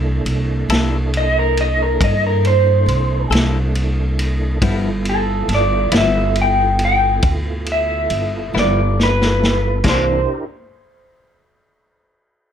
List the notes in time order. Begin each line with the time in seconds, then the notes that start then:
Already playing: C2 A#3 D4 E4 A4
0.25 C2, ride
0.69 C2 C3 A#3 E4 A4, snare, ride
1.14 D#5, ride
1.39 A#4
1.57 D#5, ride
1.82 A#4
2.00 G2 D#5, kick, ride
2.27 A#4
2.45 C5, ride
2.86 C2, ride
3.30 C2 C3 A#3 E4 A4, ride
3.35 snare
3.75 ride
4.19 ride
4.61 G1 G2 F3 B3 E4 F4 A4, kick, ride
5.05 ride
5.09 A4
5.48 G1, snare, ride
5.55 D5
5.92 G1 G2 F3 B3 E4, snare, ride
5.97 E5
6.36 ride
6.42 G5
6.79 ride
6.85 G5
7.22 D2, kick, ride
7.66 ride
7.72 E5
8.10 G1, ride
8.54 G1 G2 F3 B3 E4, snare
8.59 D5
9.00 B4, snare
9.22 snare
9.43 snare
9.84 C2 C3 E3 A#3 D4 E4 G4 A#4, kick, snare, china
9.89 C5